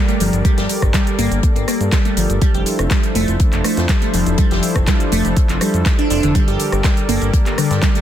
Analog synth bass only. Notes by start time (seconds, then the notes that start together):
0.20 G1
0.33 G1
0.58 G1
0.82 G1
1.19 G1
1.31 G1
1.56 G1
1.81 G2
2.17 G1
2.30 G1
2.54 F1
2.79 F1
3.15 F1
3.28 F1
3.53 F1
3.78 F2
4.14 F1
4.27 F1
4.51 F1
4.76 F1
5.12 F1
5.25 F1
5.50 F1
5.74 F2
6.10 F1
6.23 F1
6.48 G1
6.72 G1
7.09 G1
7.22 G1
7.46 G1
7.71 G2